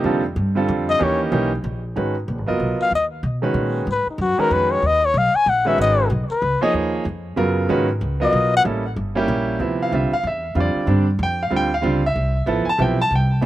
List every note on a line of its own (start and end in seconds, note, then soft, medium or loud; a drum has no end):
0.00 0.35 F2 medium
0.00 0.20 C3 medium
0.00 0.20 F3 medium
0.00 0.20 A#3 medium
0.00 0.20 D#4 medium
0.00 0.21 G4 medium
0.04 0.22 D3 medium
0.04 0.22 G3 medium
0.04 0.22 C4 medium
0.04 0.23 F4 medium
0.04 0.23 A4 medium
0.36 0.67 G2 medium
0.55 0.97 D3 medium
0.55 0.97 G3 medium
0.55 0.98 C4 medium
0.55 0.98 F4 medium
0.55 0.98 A4 medium
0.69 0.99 F2 medium
0.89 1.05 D#5 loud
0.99 1.31 D#2 medium
0.99 1.30 E3 medium
0.99 1.30 A#3 medium
0.99 1.31 C#4 medium
0.99 1.31 D#4 medium
0.99 1.31 G4 medium
0.99 1.21 C#5 medium
1.31 1.63 B1 medium
1.31 1.49 E3 medium
1.31 1.50 A#3 medium
1.31 1.50 C#4 medium
1.31 1.50 D#4 medium
1.31 1.50 G4 medium
1.64 1.95 A#1 medium
1.96 2.27 G#1 medium
1.96 2.14 D#3 medium
1.96 2.13 G#3 soft
1.96 2.14 C#4 soft
1.96 2.14 F#4 soft
1.96 2.14 B4 medium
2.28 2.38 A#1 medium
2.38 2.49 G#1 medium
2.46 2.59 F#1 medium
2.46 2.88 F#3 medium
2.46 2.89 B3 medium
2.46 2.89 F4 medium
2.46 2.89 A#4 medium
2.46 2.89 D#5 medium
2.60 2.78 B1 medium
2.80 2.92 F5 loud
2.80 muted upright bass stroke soft
2.91 3.22 D#2 medium
2.95 3.06 D#5 medium
3.23 3.53 B2 medium
3.42 3.84 D#3 medium
3.42 3.84 G#3 medium
3.42 3.84 C#4 medium
3.42 3.84 F#4 medium
3.42 3.85 B4 medium
3.54 3.85 A#2 medium
3.87 4.05 G#2 medium
3.91 4.08 B4 medium
4.07 4.23 D#4 medium
4.07 muted upright bass stroke soft
4.18 4.37 F#2 medium
4.18 4.41 F#4 medium
4.38 4.80 D#3 medium
4.38 4.80 G#3 medium
4.38 4.80 C#4 medium
4.38 4.80 F#4 medium
4.38 4.54 A#4 medium
4.38 4.80 B4 medium
4.38 muted upright bass stroke soft
4.51 4.81 F2 medium
4.51 4.73 B4 medium
4.71 4.88 C#5 medium
4.82 5.13 D#2 medium
4.82 5.07 D#5 loud
5.05 5.19 C#5 loud
5.14 5.32 B1 medium
5.14 5.37 F5 medium
5.34 5.51 G#5 loud
5.34 muted upright bass stroke soft
5.46 5.77 A#1 medium
5.46 5.69 F#5 medium
5.65 6.07 D#3 medium
5.65 6.07 G#3 medium
5.65 6.07 C#4 medium
5.65 6.08 F#4 medium
5.65 6.08 B4 medium
5.65 5.78 E5 medium
5.78 6.09 G#1 medium
5.78 6.09 D#5 medium
6.10 6.28 B1 medium
6.30 6.64 B4 medium
6.30 muted upright bass stroke soft
6.42 6.60 C#2 medium
6.61 7.03 F3 medium
6.61 7.03 A#3 medium
6.61 7.03 D#4 medium
6.61 7.03 G#4 medium
6.61 7.03 C#5 medium
6.61 6.74 D#5 medium
6.61 muted upright bass stroke soft
6.74 7.04 D#2 medium
7.05 7.36 F2 medium
7.36 7.68 F#2 medium
7.36 7.84 C#3 medium
7.36 7.84 F#3 medium
7.36 7.85 B3 medium
7.36 7.85 F4 medium
7.36 7.85 A#4 medium
7.69 8.00 G#2 medium
7.69 7.87 D#3 medium
7.69 7.87 G#3 medium
7.69 7.87 C#4 medium
7.69 7.87 F#4 medium
7.69 7.87 B4 medium
8.01 8.32 C#2 medium
8.20 8.62 F#3 medium
8.20 8.62 B3 medium
8.20 8.62 F4 medium
8.20 8.62 A#4 medium
8.20 8.63 D#5 medium
8.20 8.52 D#5 loud
8.33 8.63 B1 medium
8.57 8.62 F#5 loud
8.64 8.96 A1 medium
8.64 8.82 G3 medium
8.64 8.82 A#3 medium
8.64 8.83 C#4 medium
8.64 8.83 E4 medium
8.64 8.83 A4 medium
8.96 9.27 G1 medium
9.15 9.57 G3 medium
9.15 9.57 A#3 medium
9.15 9.57 C#4 medium
9.15 9.58 E4 medium
9.15 9.58 G4 medium
9.28 9.59 A#1 medium
9.59 9.91 D2 medium
9.59 9.90 C3 medium
9.59 9.91 F3 medium
9.59 9.91 B3 medium
9.59 9.91 E4 medium
9.82 9.93 F5 medium
9.91 10.11 C2 medium
9.91 10.09 D3 medium
9.91 10.10 G3 medium
9.91 10.10 C4 medium
9.91 10.11 F4 medium
9.91 10.13 E5 medium
10.12 10.24 F5 medium
10.12 muted upright bass stroke soft
10.23 10.55 E2 medium
10.23 10.55 E5 medium
10.55 10.74 F2 medium
10.55 10.84 D3 medium
10.55 10.85 G3 medium
10.55 10.86 C4 soft
10.55 10.87 F4 medium
10.60 11.06 D5 medium
10.75 muted upright bass stroke soft
10.86 11.18 G2 medium
10.86 11.05 D3 medium
10.86 11.05 G3 medium
10.86 11.05 C4 medium
10.86 11.06 D4 medium
11.19 11.50 F2 medium
11.23 11.41 G5 medium
11.43 11.53 F5 medium
11.51 11.82 D2 medium
11.51 11.69 D3 medium
11.51 11.69 G3 medium
11.51 11.69 C4 medium
11.51 11.70 F4 medium
11.56 11.73 G5 medium
11.74 12.02 F5 medium
11.82 12.14 C#2 medium
11.82 12.00 D3 medium
11.82 12.01 G3 medium
11.82 12.01 C4 medium
11.82 12.01 F4 medium
12.06 12.46 E5 medium
12.16 12.46 C2 medium
12.46 12.65 A1 medium
12.46 12.64 F3 medium
12.46 12.65 B3 medium
12.46 12.65 E4 medium
12.46 12.66 A4 medium
12.67 12.80 A5 medium
12.67 muted upright bass stroke soft
12.78 13.10 B1 medium
12.78 12.96 C3 medium
12.78 12.97 F3 medium
12.78 12.97 B3 medium
12.78 12.97 E4 medium
12.78 13.00 G5 medium
13.02 13.12 A5 loud
13.11 13.41 C2 medium
13.15 13.43 G5 medium
13.41 13.46 D2 medium
13.41 13.46 E3 medium
13.41 13.46 A3 medium